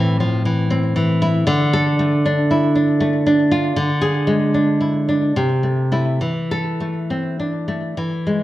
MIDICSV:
0, 0, Header, 1, 2, 480
1, 0, Start_track
1, 0, Key_signature, 0, "minor"
1, 0, Tempo, 765306
1, 926, Time_signature, 3, 2, 24, 8
1, 2845, Tempo, 836820
1, 3805, Tempo, 883652
1, 5013, End_track
2, 0, Start_track
2, 0, Title_t, "Nylon-string guitar"
2, 0, Program_c, 0, 24
2, 0, Note_on_c, 0, 45, 100
2, 0, Note_on_c, 0, 52, 83
2, 0, Note_on_c, 0, 60, 87
2, 123, Note_off_c, 0, 52, 0
2, 126, Note_on_c, 0, 53, 67
2, 282, Note_off_c, 0, 53, 0
2, 284, Note_on_c, 0, 52, 72
2, 434, Note_off_c, 0, 60, 0
2, 441, Note_on_c, 0, 60, 79
2, 593, Note_off_c, 0, 52, 0
2, 601, Note_on_c, 0, 52, 77
2, 764, Note_on_c, 0, 64, 81
2, 903, Note_off_c, 0, 45, 0
2, 918, Note_off_c, 0, 52, 0
2, 920, Note_on_c, 0, 50, 99
2, 925, Note_off_c, 0, 60, 0
2, 926, Note_off_c, 0, 64, 0
2, 1088, Note_on_c, 0, 69, 103
2, 1249, Note_on_c, 0, 57, 77
2, 1343, Note_off_c, 0, 69, 0
2, 1414, Note_on_c, 0, 62, 78
2, 1572, Note_on_c, 0, 64, 64
2, 1720, Note_off_c, 0, 62, 0
2, 1728, Note_on_c, 0, 62, 66
2, 1877, Note_off_c, 0, 57, 0
2, 1884, Note_on_c, 0, 57, 78
2, 2040, Note_off_c, 0, 62, 0
2, 2047, Note_on_c, 0, 62, 71
2, 2202, Note_off_c, 0, 64, 0
2, 2204, Note_on_c, 0, 65, 76
2, 2330, Note_off_c, 0, 50, 0
2, 2358, Note_off_c, 0, 57, 0
2, 2360, Note_off_c, 0, 62, 0
2, 2360, Note_off_c, 0, 65, 0
2, 2360, Note_on_c, 0, 50, 95
2, 2518, Note_on_c, 0, 68, 92
2, 2678, Note_on_c, 0, 56, 74
2, 2779, Note_off_c, 0, 68, 0
2, 2849, Note_on_c, 0, 62, 62
2, 3000, Note_on_c, 0, 64, 51
2, 3154, Note_off_c, 0, 62, 0
2, 3161, Note_on_c, 0, 62, 60
2, 3292, Note_off_c, 0, 50, 0
2, 3314, Note_off_c, 0, 56, 0
2, 3314, Note_off_c, 0, 64, 0
2, 3316, Note_off_c, 0, 62, 0
2, 3319, Note_on_c, 0, 48, 76
2, 3474, Note_on_c, 0, 57, 54
2, 3630, Note_off_c, 0, 57, 0
2, 3637, Note_on_c, 0, 57, 52
2, 3640, Note_on_c, 0, 64, 77
2, 3789, Note_off_c, 0, 57, 0
2, 3790, Note_off_c, 0, 64, 0
2, 3793, Note_off_c, 0, 48, 0
2, 3804, Note_on_c, 0, 52, 69
2, 3970, Note_on_c, 0, 69, 75
2, 4128, Note_on_c, 0, 57, 55
2, 4226, Note_off_c, 0, 69, 0
2, 4290, Note_on_c, 0, 60, 55
2, 4447, Note_off_c, 0, 60, 0
2, 4449, Note_on_c, 0, 62, 42
2, 4596, Note_off_c, 0, 57, 0
2, 4603, Note_on_c, 0, 57, 51
2, 4740, Note_off_c, 0, 52, 0
2, 4761, Note_off_c, 0, 57, 0
2, 4763, Note_off_c, 0, 62, 0
2, 4763, Note_on_c, 0, 52, 63
2, 4922, Note_on_c, 0, 56, 50
2, 5013, Note_off_c, 0, 52, 0
2, 5013, Note_off_c, 0, 56, 0
2, 5013, End_track
0, 0, End_of_file